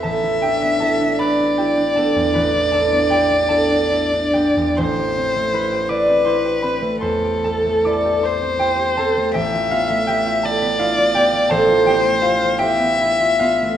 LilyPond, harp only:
\new Staff \with { instrumentName = "Harp" } { \time 12/8 \key a \minor \tempo 4. = 53 << { <a' b' d'' a'' b''>8 <g' g''>8 <a' a''>8 <b' b''>8 <g' g''>8 <a' a''>8 <b' b''>8 <a' a''>8 <g' g''>8 <a' a''>4 <g' g''>8 | <c'' c'''>4 <b' b''>8 <d'' d'''>8 <c'' c'''>8 <b' b''>8 <c'' c'''>8 <a' a''>8 <d'' d'''>8 <c'' c'''>8 <g' g''>8 <a' a''>8 | <g' g''>8 <f' f''>8 <g' g''>8 <a' a''>8 <f' f''>8 <g' g''>8 <a' a''>8 <g' g''>8 <f' f''>8 <g' g''>4 <f' f''>8 | } \\ { <a,, b e'>16 e'16 d'16 b16 e'16 d'16 e'16 d'16 e'16 d'16 b16 e,16 a,,16 e'16 d'16 b16 e'16 d'16 e'16 d'16 e'16 d'16 b16 e,16 | a,,16 g'16 c'16 a16 e'16 g'16 e'16 c'16 e'16 g'16 c'16 a16 e,16 g'16 c'16 a16 e'16 g'16 e'16 c'16 e'16 g'16 c'16 a16 | a,,16 f'16 b16 a16 e'16 f'16 e'16 b16 e'16 f'16 b16 a16 a,,16 f'16 b16 a16 e'16 f'16 e'16 b16 e'16 f'16 b16 a16 | } >> }